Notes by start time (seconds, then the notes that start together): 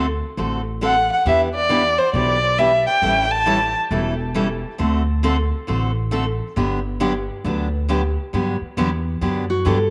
Already playing: D2
0.37 A1 D3 A3 C4 F#4 A4
0.81 D3 A3 C4 F#4 A4 F#5
1.12 F#5
1.25 E2 E3 B3 D4 G4 E5
1.55 D5
1.69 E3 B3 D4 G4
1.99 C5
2.13 B1 E3 B3 D4 G4 D5
2.58 E3 B3 D4 G4 E5
2.87 G5
3.02 A1 E3 G3 C#4 E4 A4
3.31 A5
3.46 E3 G3 C#4 E4 A4
3.91 E1 E3 G3 C#4 E4 A4
4.34 E3 G3 C#4 E4 A4
4.78 D2 D3 A3 C4 F#4 A4
5.23 D3 A3 C4 F#4 A4
5.67 A1 D3 A3 C4 F#4 A4
6.11 D3 A3 C4 F#4 A4
6.56 G1 D3 F#3 B3 D4 G4
7.00 D3 F#3 B3 D4 G4
7.44 D2 D3 F#3 B3 D4 G4
7.89 D3 F#3 B3 D4 G4
8.33 G2 D3 F#3 B3 D4 G4
8.61 muted upright bass stroke
8.77 E2 D3 F#3 B3 D4 G4
9.21 F#2 D3 F#3 B3 D4 G4
9.50 F#4
9.65 G2 D3 F#3 B3 D4 G4 A4